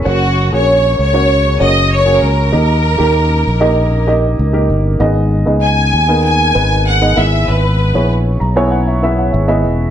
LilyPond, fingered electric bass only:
\new Staff \with { instrumentName = "Fingered electric bass" } { \clef bass \time 4/4 \key gis \minor \tempo 4 = 97 fis,,8. ais,,8. cis,4 fis,,4 cis,8 | dis,8. dis,8. ais,,4. cis,8 g,,8 | gis,,8. cis,8. dis,4 gis,,4 gis,,8 | gis,,8. ais,,8. b,,4. gis,,8 e,,8 | }